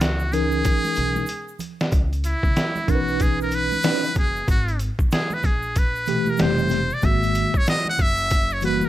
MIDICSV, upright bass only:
0, 0, Header, 1, 2, 480
1, 0, Start_track
1, 0, Tempo, 638298
1, 1448, Time_signature, 4, 2, 24, 8
1, 6684, End_track
2, 0, Start_track
2, 0, Title_t, "Upright bass"
2, 0, Program_c, 0, 32
2, 0, Note_on_c, 0, 37, 98
2, 458, Note_off_c, 0, 37, 0
2, 730, Note_on_c, 0, 35, 83
2, 912, Note_off_c, 0, 35, 0
2, 1448, Note_on_c, 0, 37, 101
2, 1747, Note_off_c, 0, 37, 0
2, 1830, Note_on_c, 0, 37, 80
2, 1901, Note_off_c, 0, 37, 0
2, 2167, Note_on_c, 0, 35, 83
2, 2769, Note_off_c, 0, 35, 0
2, 3130, Note_on_c, 0, 30, 81
2, 3313, Note_off_c, 0, 30, 0
2, 3370, Note_on_c, 0, 32, 105
2, 3668, Note_off_c, 0, 32, 0
2, 3754, Note_on_c, 0, 34, 79
2, 3823, Note_off_c, 0, 34, 0
2, 4092, Note_on_c, 0, 34, 81
2, 4691, Note_off_c, 0, 34, 0
2, 4812, Note_on_c, 0, 29, 94
2, 5177, Note_off_c, 0, 29, 0
2, 5288, Note_on_c, 0, 32, 108
2, 5587, Note_off_c, 0, 32, 0
2, 5674, Note_on_c, 0, 32, 79
2, 5743, Note_off_c, 0, 32, 0
2, 6010, Note_on_c, 0, 30, 93
2, 6610, Note_off_c, 0, 30, 0
2, 6684, End_track
0, 0, End_of_file